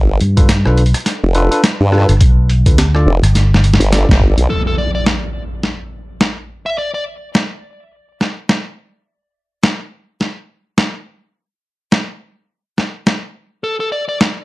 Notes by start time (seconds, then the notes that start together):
Already playing: G1
0.21 G2, closed hi-hat
0.37 D4 F4 A4 B4, kick, closed hi-hat
0.49 snare, closed hi-hat
0.66 B1 D4 F4 A4 B4, cross-stick
0.78 closed hi-hat
0.86 closed hi-hat
0.94 cross-stick, closed hi-hat
1.00 closed hi-hat
1.06 snare, closed hi-hat
1.24 F1
1.35 D4 F4 A4 B4, closed hi-hat
1.51 D4 F4 A4 B4, closed hi-hat
1.64 snare, closed hi-hat
1.81 G2
1.92 D4 F4 A4 B4, cross-stick
1.98 cross-stick
2.02 cross-stick
2.09 G1, cross-stick, closed hi-hat
2.11 cross-stick
2.17 cross-stick, closed hi-hat
2.21 B1, kick
2.50 closed hi-hat
2.66 D2 D4 F4 A4 B4, kick, closed hi-hat
2.78 snare, closed hi-hat
2.95 D4 F4 A4 D5, cross-stick
3.06 F1
3.23 G1, cross-stick, closed hi-hat
3.35 snare, closed hi-hat
3.54 snare
3.64 closed hi-hat
3.74 snare
3.80 G1, closed hi-hat
3.92 D4 F4 A4 D5, snare, closed hi-hat
4.09 G1, kick, snare
4.21 kick
4.37 B1, closed hi-hat
4.49 A4, impact
4.67 A4
4.78 D5
4.95 D5
5.06 snare
5.63 snare
6.21 snare
6.66 E5
6.78 D5
6.94 D5
7.35 snare
8.21 snare
8.49 snare
9.63 snare
10.21 snare
10.78 snare
11.92 snare
12.78 snare
13.07 snare
13.64 A4
13.80 A4
13.92 D5
14.09 D5
14.21 snare